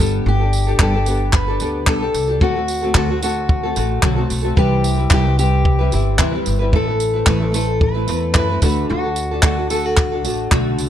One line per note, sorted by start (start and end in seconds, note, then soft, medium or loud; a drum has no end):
0.00 0.24 G1 medium
0.00 0.41 G3 medium
0.00 0.41 B3 medium
0.00 0.41 D4 medium
0.00 0.40 G4 medium
0.00 0.38 A4 medium
0.26 0.76 G1 loud
0.26 0.81 G4 loud
0.40 0.68 D4 soft
0.40 0.67 G4 soft
0.40 0.66 A4 soft
0.53 tambourine medium
0.67 0.79 D4 soft
0.67 0.79 G4 medium
0.67 0.80 A4 medium
0.79 1.57 G1 medium
0.79 0.94 G3 medium
0.79 0.95 B3 medium
0.79 0.95 D4 medium
0.79 0.94 G4 medium
0.79 1.35 G4 medium
0.79 0.92 A4 medium
0.79 kick loud
0.79 clap loud
0.93 1.07 D4 soft
0.93 1.07 G4 medium
0.93 1.06 A4 medium
1.06 1.48 B3 medium
1.06 1.49 D4 medium
1.06 1.48 G4 medium
1.06 1.47 A4 medium
1.06 tambourine medium
1.33 1.88 B4 medium
1.33 kick loud
1.33 clap medium
1.48 1.60 D4 soft
1.48 1.61 G4 soft
1.48 1.60 A4 medium
1.60 1.87 D2 medium
1.60 1.86 B3 medium
1.60 1.86 D4 medium
1.60 1.87 G4 medium
1.60 1.87 A4 medium
1.60 tambourine medium
1.86 2.12 B1 medium
1.86 2.02 G3 medium
1.86 2.02 B3 medium
1.86 2.02 D4 medium
1.86 2.01 G4 medium
1.86 1.99 A4 medium
1.86 2.27 A4 loud
1.86 kick loud
1.86 clap loud
2.01 2.30 D4 soft
2.01 2.28 G4 soft
2.01 2.27 A4 medium
2.14 2.42 C2 medium
2.14 tambourine medium
2.28 2.41 D4 soft
2.28 2.42 G4 soft
2.28 2.41 A4 medium
2.40 2.91 D2 loud
2.40 2.56 D3 medium
2.40 2.56 F#3 medium
2.40 2.56 A3 medium
2.40 2.56 C4 medium
2.40 2.55 F#4 medium
2.40 2.95 F#4 loud
2.40 2.54 A4 medium
2.40 kick loud
2.55 2.84 A3 soft
2.55 2.83 C4 soft
2.55 2.82 F#4 soft
2.55 2.81 A4 medium
2.68 tambourine medium
2.82 2.94 A3 soft
2.82 2.94 C4 medium
2.82 2.94 F#4 medium
2.82 2.94 A4 medium
2.94 3.72 D2 loud
2.94 3.09 D3 medium
2.94 3.10 F#3 medium
2.94 3.10 A3 medium
2.94 3.10 C4 medium
2.94 3.09 F#4 medium
2.94 3.22 F#4 medium
2.94 3.08 A4 medium
2.94 kick loud
2.94 clap loud
3.09 3.20 A3 soft
3.09 3.22 C4 soft
3.09 3.22 F#4 soft
3.09 3.22 A4 soft
3.22 3.64 A3 medium
3.22 3.64 C4 medium
3.22 4.27 F#4 medium
3.22 3.63 F#4 medium
3.22 3.62 A4 medium
3.22 tambourine medium
3.49 kick loud
3.63 3.74 A3 medium
3.63 3.75 C4 soft
3.63 3.76 F#4 soft
3.63 3.76 A4 medium
3.75 4.01 A1 loud
3.75 4.02 A3 medium
3.75 4.02 C4 medium
3.75 4.02 F#4 medium
3.75 4.03 A4 medium
3.75 tambourine medium
4.02 4.28 B1 medium
4.02 4.17 D3 medium
4.02 4.18 F#3 medium
4.02 4.18 A3 medium
4.02 4.17 C4 medium
4.02 4.16 F#4 loud
4.02 4.15 A4 loud
4.02 kick loud
4.02 clap loud
4.16 4.44 A3 medium
4.16 4.43 C4 medium
4.16 4.43 F#4 medium
4.16 4.42 A4 medium
4.30 4.55 B1 medium
4.30 tambourine medium
4.43 4.56 A3 medium
4.43 4.56 C4 soft
4.43 4.57 F#4 soft
4.43 4.56 A4 medium
4.56 5.07 C2 loud
4.56 4.98 C3 medium
4.56 4.99 E3 medium
4.56 4.99 G3 medium
4.56 4.99 C4 medium
4.56 4.97 E4 medium
4.56 5.13 G4 loud
4.56 4.96 B4 medium
4.56 kick loud
4.84 tambourine medium
4.98 5.09 G3 soft
4.98 5.10 C4 medium
4.98 5.10 E4 medium
4.98 5.10 B4 medium
5.10 5.88 C2 loud
5.10 5.25 C3 medium
5.10 5.25 E3 medium
5.10 5.26 G3 medium
5.10 5.25 C4 medium
5.10 5.24 E4 medium
5.10 5.38 G4 loud
5.10 5.24 B4 medium
5.10 kick loud
5.10 clap loud
5.25 5.37 G3 soft
5.25 5.37 C4 soft
5.25 5.38 E4 medium
5.25 5.37 B4 medium
5.38 5.80 G3 medium
5.38 5.80 C4 medium
5.38 5.79 E4 medium
5.38 6.43 G4 loud
5.38 5.78 B4 medium
5.38 tambourine medium
5.65 kick loud
5.79 5.90 G3 medium
5.79 5.91 C4 medium
5.79 5.92 E4 medium
5.79 5.92 B4 medium
5.91 6.17 G1 loud
5.91 6.17 G3 medium
5.91 6.18 C4 medium
5.91 6.18 E4 medium
5.91 6.18 B4 medium
5.91 tambourine medium
6.18 6.44 D2 medium
6.18 6.33 C3 medium
6.18 6.34 E3 loud
6.18 6.34 G3 medium
6.18 6.33 C4 loud
6.18 6.33 E4 loud
6.18 6.31 B4 loud
6.18 kick loud
6.18 clap loud
6.33 6.61 G3 soft
6.33 6.60 C4 medium
6.33 6.59 E4 medium
6.33 6.58 B4 medium
6.46 6.71 G1 medium
6.46 tambourine medium
6.59 6.73 G3 soft
6.59 6.72 C4 medium
6.59 6.72 E4 medium
6.59 6.72 B4 medium
6.72 7.23 A1 medium
6.72 6.87 A2 medium
6.72 6.88 E3 medium
6.72 6.88 A3 medium
6.72 6.88 C4 medium
6.72 6.87 E4 medium
6.72 7.27 A4 loud
6.72 6.86 B4 medium
6.72 kick loud
6.88 7.15 A3 soft
6.88 7.14 C4 soft
6.88 7.14 E4 medium
6.88 7.12 B4 soft
7.00 tambourine medium
7.14 7.26 A3 medium
7.14 7.26 C4 medium
7.14 7.27 E4 medium
7.14 7.26 B4 medium
7.26 8.04 A1 loud
7.26 7.41 A2 medium
7.26 7.42 E3 medium
7.26 7.41 A3 medium
7.26 7.41 C4 medium
7.26 7.40 E4 medium
7.26 7.54 A4 loud
7.26 7.39 B4 medium
7.26 kick loud
7.26 clap loud
7.40 7.51 A3 soft
7.40 7.52 C4 soft
7.40 7.53 E4 medium
7.40 7.53 B4 medium
7.52 7.95 A3 medium
7.52 7.95 C4 medium
7.52 7.94 E4 medium
7.52 7.82 A4 loud
7.52 7.93 B4 medium
7.52 tambourine medium
7.81 8.32 B4 medium
7.81 kick loud
7.94 8.06 A3 medium
7.94 8.06 C4 medium
7.94 8.07 E4 medium
7.94 8.07 B4 medium
8.07 8.35 E2 loud
8.07 8.34 A3 medium
8.07 8.35 C4 medium
8.07 8.35 E4 medium
8.07 8.35 B4 medium
8.07 tambourine medium
8.34 8.60 F#2 medium
8.34 8.50 A2 medium
8.34 8.50 E3 medium
8.34 8.50 A3 medium
8.34 8.50 C4 medium
8.34 8.50 E4 medium
8.34 8.62 B4 loud
8.34 8.49 B4 medium
8.34 kick loud
8.34 clap loud
8.50 8.61 A3 soft
8.50 8.63 C4 medium
8.50 8.63 E4 medium
8.50 8.62 B4 medium
8.62 8.87 D2 loud
8.62 9.04 D3 medium
8.62 9.04 A3 medium
8.62 9.04 D4 medium
8.62 9.04 F#4 medium
8.62 9.02 A4 medium
8.62 8.89 B4 loud
8.62 kick loud
8.62 tambourine medium
8.90 9.40 D2 loud
8.90 9.43 F#4 medium
9.04 9.32 D4 soft
9.04 9.31 F#4 soft
9.04 9.30 A4 medium
9.16 tambourine medium
9.31 9.43 D4 medium
9.31 9.43 F#4 medium
9.31 9.43 A4 medium
9.43 10.26 D2 medium
9.43 9.58 D3 medium
9.43 9.58 A3 medium
9.43 9.58 D4 medium
9.43 9.57 F#4 medium
9.43 9.70 F#4 medium
9.43 9.56 A4 medium
9.43 kick loud
9.43 clap loud
9.57 9.70 D4 soft
9.57 9.71 F#4 soft
9.57 9.70 A4 soft
9.70 10.12 A3 medium
9.70 10.13 D4 medium
9.70 10.12 F#4 medium
9.70 9.86 A4 medium
9.70 10.11 A4 medium
9.70 tambourine medium
9.86 10.79 F#4 medium
9.97 kick loud
9.97 clap loud
10.12 10.24 D4 soft
10.12 10.24 F#4 medium
10.12 10.24 A4 medium
10.24 10.50 A1 medium
10.24 10.50 A3 medium
10.24 10.51 D4 medium
10.24 10.51 F#4 medium
10.24 10.52 A4 medium
10.24 tambourine medium
10.51 10.77 B1 medium
10.51 10.89 D3 medium
10.51 10.89 A3 medium
10.51 10.89 D4 medium
10.51 10.89 F#4 loud
10.51 10.89 A4 loud
10.51 kick loud
10.51 clap loud
10.79 10.89 C2 medium
10.79 tambourine medium